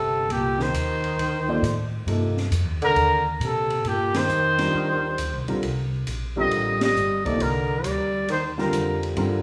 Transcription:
Already playing: G1 C3 A4
0.29 C2 A#2 G4, ride
0.59 D#3 C5, snare
0.73 D#2, hi-hat pedal, ride
1.04 ride
1.17 D2, ride
1.48 F3 A#3 D#4 A4 D5
1.62 A2, hi-hat pedal, ride
2.06 G2 C3 F3 A#3 D#4 A4, ride
2.37 snare
2.51 F2, hi-hat pedal, ride
2.65 D#2
2.81 C2 D3 A#4, ride
2.96 D#2, ride
3.40 A#2 C3, hi-hat pedal, ride
3.44 A4
3.70 ride
3.84 G2 A#2 G4, ride
4.14 D#3 C5, snare, ride
4.28 F2, hi-hat pedal
4.58 G3 C4 D4 F4 A#4, snare, ride
4.73 D#2
5.18 D2, hi-hat pedal, ride
5.33 C2
5.48 A#1 D3 G3 C4 F4 A#4, ride
5.63 C2, ride
6.07 A#1, hi-hat pedal, ride
6.36 D3 G3 C4 F4 A#4 D#5
6.51 A1, ride
6.80 G3 D#5, snare, ride
6.96 G1, hi-hat pedal
7.25 C3 F3 A#3 D#4 A4 D5, kick, ride
7.39 C2 D3 A#4, ride
7.83 D2 G3 D5, hi-hat pedal, ride
8.28 D#2 D#3 C5, ride
8.58 D3 G3 C4 F4 A#4, snare
8.72 F2, hi-hat pedal, ride
9.03 ride
9.16 G2 D3 G3 C4 F4 A#4, ride

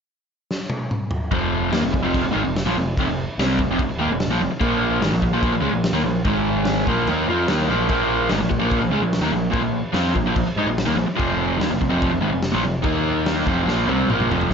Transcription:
0.51 snare
0.70 high tom
0.91 mid tom
1.11 floor tom
1.31 F1 F2 C3 F3, kick, crash
1.71 D#2 D#3 A#3, snare, crash
1.82 F1 F2 C3
1.92 F1 F2 C3, kick
2.03 F1 F2 C3 F3
2.14 kick, crash
2.23 F1 F2 C3
2.31 G#1 G#2 D#3
2.44 F1 F2 C3
2.56 snare, crash
2.65 A#1 A#2 F3
2.76 F1 F2 C3
2.97 F1 F2 C3, kick, crash
3.06 F1 F2 C3
3.38 C2 C3 G3 C4, snare, crash
3.58 F1 F2 C3, kick
3.67 F1 F2 C3
3.79 F1 F2 C3, kick, crash
3.88 muted picked electric bass stroke, muted overdriven electric guitar stroke
3.96 D#2 D#3
4.01 A#3
4.07 F1
4.12 F2 C3
4.20 snare, crash
4.27 A#1 A#2
4.31 F3
4.39 F1 F2 C3
4.50 muted picked electric bass stroke, muted overdriven electric guitar stroke
4.60 A#1 A#2 F3 A#3, kick, crash
5.00 G#1 G#2 D#3, snare, crash
5.11 A#1 A#2 F3
5.22 A#1 A#2 F3, kick
5.30 A#1 A#2 F3 A#3
5.43 kick, crash
5.51 A#1 A#2 F3
5.61 C#2 C#3 G#3
5.72 A#1 A#2 F3
5.84 snare, crash
5.92 D#2 D#3 A#3
6.03 A#1 A#2 F3
6.24 G#1 G#2 D#3 G#3, kick, crash
6.65 snare, crash
6.87 A#1 A#2 F3 A#3, kick
7.07 D#2 D#3 A#3 D#4, crash
7.28 F2 F3 C4 F4
7.48 D#2 D#3 A#3 D#4, snare, crash
7.68 A#1 A#2 F3 A#3
7.88 A#1 A#2 F3 A#3, kick, crash
8.30 G#1 G#2 D#3, snare, crash
8.39 A#1 A#2 F3
8.50 A#1 A#2 F3, kick
8.60 A#1 A#2 F3 A#3
8.71 kick, crash
8.80 A#1 A#2 F3
8.89 C#2 C#3 G#3
9.00 A#1 A#2 F3
9.13 snare, crash
9.21 D#2 D#3 A#3
9.31 A#1 A#2 F3
9.51 A#1 A#2 F3, kick, crash
9.61 A#1 A#2 F3
9.93 F2 F3 C4 F4, snare, crash
10.15 A#1 A#2 F3, kick
10.24 A#1 A#2 F3
10.35 A#1 A#2 F3, kick, crash
10.46 muted picked electric bass stroke, muted overdriven electric guitar stroke
10.56 G#2 G#3 D#4
10.67 A#1 A#2 F3
10.78 snare, crash
10.86 D#2 D#3 A#3
10.96 A#1 A#2 F3
11.07 muted picked electric bass stroke, muted overdriven electric guitar stroke
11.16 F1 F2 C3 F3, kick, crash
11.58 D#2 D#3 A#3, snare, crash
11.69 F1 F2 C3
11.81 F1 F2 C3, kick
11.90 F1 F2 C3 F3
12.02 kick, crash
12.11 F1 F2 C3
12.21 G#1 G#2 D#3
12.32 F1 F2 C3
12.43 snare, crash
12.52 A#1 A#2 F3
12.63 F1 F2 C3
12.82 D#2 D#3 A#3 D#4, kick, crash
13.26 snare, crash
13.46 F1 F2 C3 F3, kick
13.66 A#1 A#2 F3 A#3, snare
13.86 C2 C3 G3 C4, high tom
14.07 A#1 A#2 F3, mid tom
14.12 A#3
14.20 mid tom
14.29 F1 F2 C3 F3, floor tom
14.41 floor tom
14.50 F1 F2

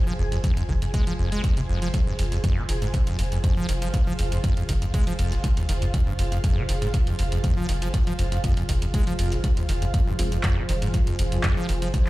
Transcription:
Already playing: F4 G#4 C5 G#5
0.07 F3
0.19 F1 F2
0.32 F2, closed hi-hat
0.44 F2, kick, closed hi-hat
0.57 F2, closed hi-hat
0.69 F1 D#3, kick
0.82 F2, closed hi-hat
0.94 G#3, kick, closed hi-hat
1.07 F3, closed hi-hat
1.19 F1 F2
1.32 G#3, closed hi-hat
1.44 F2, kick, closed hi-hat
1.57 C3, closed hi-hat
1.69 F1 F2
1.82 F3, closed hi-hat
1.94 F2, kick, closed hi-hat
2.07 G2
2.19 F1 F2, open hi-hat
2.32 F2, closed hi-hat
2.44 F2, kick, closed hi-hat
2.57 C3
2.69 F1 D#3, open hi-hat
2.75 F5
2.82 G#2, closed hi-hat
2.94 G2, kick, closed hi-hat
3.07 F2, closed hi-hat
3.19 F1 F2, open hi-hat
3.32 F2, closed hi-hat
3.44 F2, kick, closed hi-hat
3.57 F3
3.69 F1 D#3, open hi-hat
3.82 F3, closed hi-hat
3.94 G2, kick, closed hi-hat
4.07 F3
4.19 F1 F2, open hi-hat
4.32 F2, closed hi-hat
4.44 F2, kick, closed hi-hat
4.57 F2, closed hi-hat
4.69 F1 D#3, kick, open hi-hat
4.82 F2, closed hi-hat
4.94 G#3, kick, closed hi-hat
5.07 F3, open hi-hat
5.19 F1 F2, open hi-hat
5.32 F1, closed hi-hat
5.44 G#2, kick, closed hi-hat
5.57 D#2, closed hi-hat
5.69 F1 D#3, open hi-hat
5.82 F2, closed hi-hat
5.94 F2, kick, closed hi-hat
6.07 G2
6.19 F1 F2, open hi-hat
6.32 F2, closed hi-hat
6.44 F2, kick, closed hi-hat
6.57 C3
6.69 F1 D#3, open hi-hat
6.82 G#2, closed hi-hat
6.94 G2, kick, closed hi-hat
7.07 F2, closed hi-hat
7.19 F1 F2, open hi-hat
7.32 F2, closed hi-hat
7.44 F2, kick, closed hi-hat
7.57 F3
7.69 F1 D#3, open hi-hat
7.82 F3, closed hi-hat
7.94 G2, kick, closed hi-hat
8.07 F3, closed hi-hat
8.19 F1 F2, open hi-hat
8.32 F2, closed hi-hat
8.44 F2, kick, closed hi-hat
8.57 F2, closed hi-hat
8.69 F1 D#3, kick, open hi-hat
8.82 F2, closed hi-hat
8.94 G#3, kick, closed hi-hat
9.07 F3, open hi-hat
9.19 F1 F2, open hi-hat
9.32 F1, closed hi-hat
9.44 G#2, kick, closed hi-hat
9.57 D#2, closed hi-hat
9.69 F1 D#3, open hi-hat
9.82 F2, closed hi-hat
9.94 F2 F3 F4 G#4 C5, kick, closed hi-hat
10.07 G2
10.19 F1 F2 G#3 C4 F4, open hi-hat
10.32 F2, closed hi-hat
10.43 F2, kick, clap, closed hi-hat
10.57 C3
10.69 F1 D#3, open hi-hat
10.75 G#5
10.82 G#2, closed hi-hat
10.94 G2, kick, closed hi-hat
11.07 F2, closed hi-hat
11.19 F1 F2, open hi-hat
11.32 F2, closed hi-hat
11.43 F2, kick, clap, closed hi-hat
11.57 F3
11.69 F1 D#3, open hi-hat
11.82 F3, closed hi-hat
11.94 G2, kick, closed hi-hat

